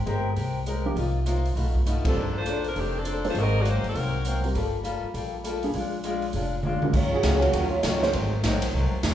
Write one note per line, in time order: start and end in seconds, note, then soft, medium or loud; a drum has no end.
0.06 0.34 G1 medium
0.06 0.26 G#3 medium
0.06 0.26 C4 medium
0.06 0.27 G4 medium
0.06 0.27 A#4 medium
0.06 closed hi-hat medium
0.36 0.93 C2 medium
0.36 0.56 G#3 medium
0.36 0.57 C4 soft
0.36 0.57 G4 medium
0.36 0.57 A#4 medium
0.36 open hi-hat soft
0.66 0.86 G#3 medium
0.66 0.87 C4 medium
0.66 0.87 G4 medium
0.66 0.87 A#4 medium
0.66 closed hi-hat medium
0.85 0.95 F3 medium
0.85 0.95 A#3 medium
0.85 0.95 D#4 medium
0.85 0.96 G4 medium
0.95 1.53 C2 medium
0.95 1.16 C3 soft
0.95 1.16 A#3 medium
0.95 1.17 D#4 soft
0.95 1.17 F4 medium
0.95 open hi-hat soft
1.26 1.46 C3 medium
1.26 1.46 A#3 medium
1.26 1.46 D#4 medium
1.26 1.47 F4 medium
1.26 closed hi-hat medium
1.45 open hi-hat soft
1.55 2.01 B1 medium
1.55 1.75 B2 soft
1.55 1.76 A3 soft
1.55 1.77 D#4 medium
1.55 1.77 F4 medium
1.55 open hi-hat soft
1.75 kick soft
1.86 2.06 B2 medium
1.86 2.06 A3 medium
1.86 2.06 D#4 medium
1.86 2.07 F4 medium
1.86 closed hi-hat medium
2.05 2.15 A1 medium
2.05 2.34 F3 medium
2.05 2.15 G3 medium
2.05 2.15 C4 medium
2.05 2.34 C4 medium
2.05 2.34 D4 medium
2.05 2.15 F4 medium
2.05 2.15 A4 medium
2.05 2.34 A4 medium
2.05 kick medium
2.05 ride medium
2.16 2.72 A#1 medium
2.16 2.36 A#3 soft
2.16 2.36 D4 soft
2.16 2.37 A4 soft
2.16 2.37 C5 soft
2.38 2.65 A3 medium
2.38 2.64 D4 medium
2.38 2.65 F4 medium
2.38 2.64 C5 medium
2.45 2.65 A#3 medium
2.45 2.66 D4 medium
2.45 2.66 A4 medium
2.45 2.66 C5 medium
2.45 closed hi-hat soft
2.64 open hi-hat soft
2.69 2.78 F3 medium
2.69 2.78 C4 medium
2.69 2.78 D4 medium
2.69 2.78 A#4 medium
2.75 3.33 F1 medium
2.75 2.95 A#3 soft
2.75 2.95 D4 medium
2.75 2.96 A4 medium
2.75 2.96 C5 medium
2.75 open hi-hat soft
2.79 2.97 D#3 medium
2.79 2.96 A3 medium
2.79 2.96 C4 medium
2.79 2.96 G4 medium
2.98 3.26 F3 medium
2.98 3.26 C4 medium
2.98 3.26 D4 medium
2.98 3.26 A4 medium
3.05 3.25 A#3 medium
3.05 3.26 D4 medium
3.05 3.26 A4 medium
3.05 3.26 C5 medium
3.05 closed hi-hat medium
3.25 3.34 A#3 medium
3.25 3.34 D#4 medium
3.25 3.34 G#4 medium
3.25 3.34 C5 medium
3.25 open hi-hat soft
3.29 3.37 A3 medium
3.29 3.37 D4 medium
3.29 3.37 F4 medium
3.29 3.37 C5 medium
3.34 3.80 G#1 medium
3.34 3.55 G#2 soft
3.34 3.56 F#3 soft
3.34 3.56 A#3 soft
3.34 3.56 C4 medium
3.34 open hi-hat soft
3.39 3.56 C4 loud
3.39 3.56 F#4 medium
3.39 3.56 A#4 medium
3.39 3.56 D#5 loud
3.59 3.68 A#3 medium
3.59 3.68 D#4 medium
3.59 3.68 F#4 medium
3.59 3.67 D5 loud
3.64 3.85 G#2 medium
3.64 3.85 F#3 medium
3.64 3.85 A#3 medium
3.64 3.86 C4 medium
3.64 closed hi-hat soft
3.70 3.86 A#3 medium
3.70 3.86 D#4 medium
3.70 3.87 F#4 medium
3.70 3.86 C5 medium
3.84 3.94 G1 medium
3.84 open hi-hat soft
3.88 4.42 F#3 medium
3.88 4.42 C4 medium
3.88 4.42 D#4 medium
3.88 4.42 A#4 medium
3.94 4.52 C2 medium
3.94 4.14 G#2 soft
3.94 4.15 F#3 soft
3.94 4.15 A#3 soft
3.94 4.16 C4 soft
3.94 open hi-hat soft
4.24 4.45 G#2 medium
4.24 4.45 F#3 medium
4.24 4.45 A#3 medium
4.24 4.46 C4 medium
4.24 closed hi-hat medium
4.44 4.54 G3 medium
4.44 4.54 C4 medium
4.44 4.54 F4 medium
4.44 4.54 A#4 medium
4.44 open hi-hat soft
4.54 5.00 G1 medium
4.54 4.74 G3 medium
4.54 4.75 A#3 soft
4.54 4.75 F4 medium
4.54 4.76 A4 medium
4.54 open hi-hat soft
4.84 5.04 G3 medium
4.84 5.04 A#3 medium
4.84 5.05 F4 medium
4.84 5.05 A4 medium
4.84 closed hi-hat medium
5.03 muted upright bass stroke soft
5.14 5.71 A#1 medium
5.14 5.34 G3 soft
5.14 5.35 A#3 soft
5.14 5.35 F4 medium
5.14 5.36 A4 medium
5.14 open hi-hat soft
5.44 5.64 G3 medium
5.44 5.64 A#3 medium
5.44 5.64 F4 medium
5.44 5.65 A4 medium
5.44 closed hi-hat medium
5.63 5.73 A#3 medium
5.63 5.74 D4 medium
5.63 5.74 F4 soft
5.63 5.74 G#4 medium
5.63 open hi-hat soft
5.74 6.31 A#1 medium
5.74 5.94 A#2 soft
5.74 5.94 G#3 medium
5.74 5.95 D4 soft
5.74 5.95 F4 medium
5.74 open hi-hat soft
6.04 6.24 A#2 medium
6.04 6.24 G#3 medium
6.04 6.25 D4 medium
6.04 6.25 F4 medium
6.04 closed hi-hat soft
6.22 open hi-hat soft
6.33 6.79 F1 medium
6.33 6.54 A#2 medium
6.33 6.54 G#3 medium
6.33 6.55 D4 medium
6.33 6.55 F4 medium
6.33 open hi-hat soft
6.63 6.84 A#2 medium
6.63 6.84 G#3 medium
6.63 6.85 D4 medium
6.63 6.85 F4 medium
6.63 high tom soft
6.82 6.93 D#3 medium
6.82 6.93 G#3 medium
6.82 6.93 C#4 medium
6.82 6.93 F#4 medium
6.82 6.93 A#4 medium
6.82 muted upright bass stroke soft
6.82 high tom medium
6.93 7.23 A#1 medium
6.93 7.13 D#3 medium
6.93 7.14 F#3 medium
6.93 7.14 C#4 medium
6.93 7.15 F4 medium
6.93 kick medium
6.93 crash medium
7.12 7.41 F#3 medium
7.12 7.40 C#4 medium
7.12 7.40 F4 medium
7.12 7.41 G#4 loud
7.23 7.52 C#2 medium
7.23 7.43 D#3 medium
7.23 7.44 F#3 medium
7.23 7.44 C#4 medium
7.23 7.44 F4 medium
7.23 snare medium
7.23 hi-hat pedal medium
7.23 ride medium
7.40 7.71 C#3 medium
7.40 7.71 F3 medium
7.40 7.69 A#3 medium
7.40 7.72 F#4 loud
7.40 ride soft
7.53 7.82 D#2 medium
7.53 7.73 D#3 soft
7.53 7.74 F#3 soft
7.53 7.74 C#4 medium
7.53 7.75 F4 medium
7.53 ride medium
7.69 7.78 F#3 medium
7.69 7.78 A#3 medium
7.69 7.78 C#4 medium
7.69 7.82 F4 medium
7.79 7.98 F#3 medium
7.79 8.00 A#3 medium
7.79 8.00 C#4 medium
7.79 8.00 D#4 medium
7.83 8.12 C#2 medium
7.83 8.03 D#3 medium
7.83 8.04 F#3 medium
7.83 8.04 C#4 medium
7.83 8.04 F4 medium
7.83 snare medium
7.83 hi-hat pedal medium
7.83 ride medium
7.99 8.38 D#3 medium
7.99 8.39 F#3 medium
7.99 8.39 G#3 medium
7.99 8.12 A#3 medium
7.99 8.39 C4 medium
8.03 8.12 D#4 medium
8.03 8.13 G#4 medium
8.03 8.13 C5 medium
8.03 snare soft
8.13 8.43 G#1 medium
8.13 8.34 G#2 medium
8.13 8.34 F#3 soft
8.13 8.35 C4 soft
8.13 8.35 D#4 medium
8.13 ride medium
8.43 8.72 A#1 medium
8.43 8.64 G#2 medium
8.43 8.64 F#3 medium
8.43 8.64 C4 medium
8.43 8.65 D#4 medium
8.43 snare medium
8.43 hi-hat pedal medium
8.43 ride medium
8.62 ride medium
8.74 8.91 C2 loud
8.74 8.93 G#2 soft
8.74 8.94 F#3 medium
8.74 8.95 C4 medium
8.74 8.95 D#4 medium
8.92 muted upright bass stroke soft
9.03 9.14 D#2 loud
9.03 9.14 G#2 medium
9.03 9.14 F#3 medium
9.03 9.14 C4 medium
9.03 9.14 D#4 medium
9.03 snare medium
9.03 hi-hat pedal medium
9.03 ride medium